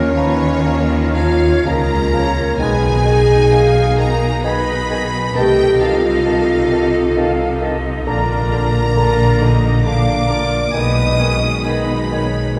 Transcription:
Already playing: D#2 D#3 A#3 C#4 F4 A#4 C#5
0.16 F3 B4 A#5
0.64 F3 A#4 A#5
1.14 F3 F4 C#5 F5 A#5
1.65 C#2 C#3 F3 A#3 F4 A#4 D#5 A#5
2.13 F3 C#5 A#5
2.59 B1 B2 D#3 G#3 D#4 G#4 B4 G#5
3.05 D#3 D#5 G#5
3.51 D#3 F5 G#5
3.97 D#3 A#4 G#5 A#5
4.43 D#3 D#4 G#4 B4 D#5 G#5 B5
4.89 D#3 G#5
5.34 C2 C3 D#3 A3 D#4 G4 A4 D#5 G5 A5
5.80 D#3 F4 F5 A5
6.25 D#3 A5
6.71 D#3 A5
7.16 D#3 F5 A5
7.61 D#3 D#5 A5
8.06 A#1 A#2 D3 A#3 D4 F4 A#4 D5 A#5
8.52 D3 A#5
8.97 D3 D4 F4 D5 A#5
9.41 D3 D#4 D#5 A#5
9.84 D3 D4 F5 A#5 D6
9.89 D5
10.27 D3 F4 D5 A#5
10.71 D#3 G#3 B3 D#4 B4 G#5
10.75 B1 B2 D#5 D#6
11.19 D#3 C#4 G#5
11.63 D#3 B3 D#4 B4 D#5 G#5 B5
12.11 D#3 C#5 G#5
12.55 D#3 D#5

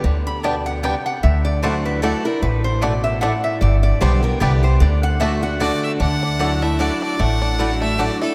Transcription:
0.04 D2 D3
0.27 B5
0.43 B2 G3 B3 D4 G4 D5 G5 A5
0.66 F#5
0.83 C3 G3 B3 D4 G4 D5 G5
1.06 F#5
1.23 D2 D3 E5
1.45 D5
1.62 F#3 A3 D4 E4 C5 D5 F#5
1.85 B4
2.02 F#3 A3 D4 E4 A4 D5 F#5
2.25 D4 E4 A#4
2.42 A1 A2 B4
2.64 C5
2.81 B2 A3 D4 E4 D5 F#5
3.04 E5
3.21 A2 A3 D4 E4 D5 F#5
3.44 E5
3.61 G1 G2 D5
3.83 D5
4.01 B1 D3 G3 B3 D4 G4 C5 D5 G5
4.23 B3 G4 A#4
4.40 C2 D3 G3 B3 D4 G4 B4 D5 G5
4.63 B3 G4 C5
4.80 D2 D3 D5
5.03 F#5
5.20 D3 A3 D4 F#4 D5 E5 A5
5.42 D4 F#4 F#5
5.60 D3 A3 D4 F#4 D5 A5
5.84 E5
6.00 D2 D3 D4 F#5
6.23 D4
6.39 F#3 A3 D4 E4 D5 F#5
6.62 A3 D4 E4 E5
6.79 F#3 A3 D4 E4 D5 F#5
7.02 D4 D5
7.19 A1 A2 A3 F#5
7.42 D4
7.58 F#3 A3 D4 E4 D5 F#5
7.82 A3 E5
7.98 F#3 A3 D4 E4 D5 F#5
8.21 A3 D4 E4 A4

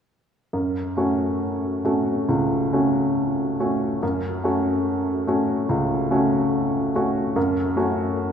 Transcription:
0.53 F#2
0.97 A3 C#4 F#4
1.85 A3 C#4 F#4
2.29 C#2
2.73 A3 C#4 F#4
3.60 A3 C#4 F#4
4.03 F#2
4.44 A3 C#4 F#4
5.27 A3 C#4 F#4
5.69 C#2
6.11 A3 C#4 F#4
6.95 A3 C#4 F#4
7.36 F#2
7.76 A3 C#4 F#4

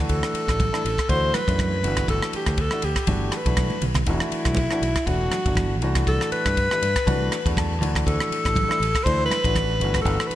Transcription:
Already playing: E3 A3 D4 F#4
0.09 D2 A4, kick, ride, muted conga
0.23 cross-stick
0.34 muted fingered electric bass stroke, ride, muted conga
0.48 A1, kick, cross-stick, ride
0.60 kick, ride, high conga
0.72 E3 A3 D4 A4, cross-stick
0.84 A1 D4, ride
0.98 kick, cross-stick, ride
1.08 D2 E3 A3 D4 F#4 C5, kick, ride, muted conga
1.34 B4, cross-stick, ride, high conga
1.47 F#2 E3 A3 D4 F#4, kick, ride
1.59 kick, cross-stick, ride, high conga
1.83 G1 E3 A3 D4 F#4, ride, muted conga
1.97 kick, cross-stick, ride
2.08 G1 A4, kick, ride, muted conga
2.23 cross-stick
2.33 G4, muted fingered electric bass stroke, ride, muted conga
2.46 D2, kick, cross-stick, ride
2.58 A4, kick, ride
2.71 E3 A3 D4 F#4, cross-stick
2.82 D2 D4 F#4 G4, ride
2.96 kick, cross-stick, ride
3.06 G1 E3 A3 D4 F#4, kick, ride, muted conga, high conga
3.32 cross-stick, ride
3.37 B4
3.46 B1 E3 A3 D4 F#4, kick, ride
3.57 kick, cross-stick, ride, high conga
3.70 high conga
3.81 B1 D4 F#4, ride, low conga
3.95 kick, cross-stick, ride, low conga
4.05 E1 E3 A3 D4 E4 F#4, kick, ride, muted conga
4.20 cross-stick
4.30 muted fingered electric bass stroke, ride, muted conga
4.45 B1, kick, cross-stick, ride
4.55 kick, ride, high conga
4.71 E3 A3 D4 F#4, cross-stick
4.82 B1 D4 F#4, ride
4.96 kick, cross-stick, ride
5.06 E1 E3 A3 D4 F#4, kick, ride, muted conga
5.31 cross-stick, ride, high conga
5.46 G1 E3 A3 D4 F#4, kick, ride
5.55 kick, cross-stick, ride, high conga
5.81 C2 E3 A3 D4 F#4, ride, muted conga
5.95 kick, cross-stick, ride
6.07 C2 A4, kick, ride, muted conga
6.21 cross-stick
6.32 B4, muted fingered electric bass stroke, ride, muted conga
6.45 G2, kick, cross-stick, ride
6.57 kick, ride
6.71 E3 A3 D4 G4, cross-stick
6.82 G2 D4 F#4, ride
6.96 kick, cross-stick, ride
7.06 C2 E3 A3 D4 F#4, kick, ride, muted conga, high conga
7.32 cross-stick, ride
7.46 E2 E3 A3 D4 F#4, kick, ride
7.57 A5, kick, cross-stick, ride, high conga
7.81 D2 E3 A3 D4 F#4, ride, muted conga, high conga
7.95 kick, cross-stick, ride
8.07 D2 A4, kick, ride, muted conga
8.20 cross-stick
8.30 muted fingered electric bass stroke, ride, muted conga
8.45 A1, kick, cross-stick, ride
8.56 kick, ride, high conga
8.68 E3 A3 D4 E4, cross-stick
8.78 A1 D4 E4
8.83 ride
8.95 kick, cross-stick, ride
9.04 D2 E3 A3 D4 E4 C5, kick, ride, muted conga
9.26 B4
9.30 cross-stick, ride, high conga
9.44 A1 E3 A3 D4 F#4, kick, ride
9.55 kick, cross-stick, ride, high conga
9.80 G1 E3 A3 D4 F#4, ride, muted conga
9.94 kick, cross-stick, ride
10.02 G1 A4, kick, muted conga
10.06 ride
10.20 cross-stick
10.27 B4, muted fingered electric bass stroke
10.31 ride, muted conga

